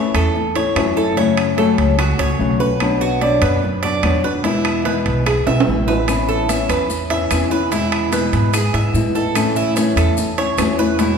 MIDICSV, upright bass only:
0, 0, Header, 1, 2, 480
1, 0, Start_track
1, 0, Key_signature, 3, "major"
1, 0, Tempo, 408998
1, 1373, Time_signature, 4, 2, 24, 8
1, 13118, End_track
2, 0, Start_track
2, 0, Title_t, "Upright bass"
2, 0, Program_c, 0, 32
2, 168, Note_on_c, 0, 40, 81
2, 844, Note_off_c, 0, 40, 0
2, 887, Note_on_c, 0, 42, 71
2, 2020, Note_off_c, 0, 42, 0
2, 2091, Note_on_c, 0, 37, 84
2, 2539, Note_off_c, 0, 37, 0
2, 2570, Note_on_c, 0, 37, 65
2, 2795, Note_off_c, 0, 37, 0
2, 2808, Note_on_c, 0, 35, 79
2, 3942, Note_off_c, 0, 35, 0
2, 4007, Note_on_c, 0, 42, 85
2, 4685, Note_off_c, 0, 42, 0
2, 4729, Note_on_c, 0, 40, 72
2, 5864, Note_off_c, 0, 40, 0
2, 5935, Note_on_c, 0, 35, 85
2, 6384, Note_off_c, 0, 35, 0
2, 6412, Note_on_c, 0, 35, 69
2, 6639, Note_off_c, 0, 35, 0
2, 6656, Note_on_c, 0, 33, 77
2, 7788, Note_off_c, 0, 33, 0
2, 7853, Note_on_c, 0, 40, 89
2, 8530, Note_off_c, 0, 40, 0
2, 8578, Note_on_c, 0, 40, 81
2, 9708, Note_off_c, 0, 40, 0
2, 9775, Note_on_c, 0, 44, 90
2, 10223, Note_off_c, 0, 44, 0
2, 10253, Note_on_c, 0, 44, 61
2, 10479, Note_off_c, 0, 44, 0
2, 10492, Note_on_c, 0, 45, 86
2, 11624, Note_off_c, 0, 45, 0
2, 11689, Note_on_c, 0, 40, 84
2, 12366, Note_off_c, 0, 40, 0
2, 12412, Note_on_c, 0, 40, 80
2, 13118, Note_off_c, 0, 40, 0
2, 13118, End_track
0, 0, End_of_file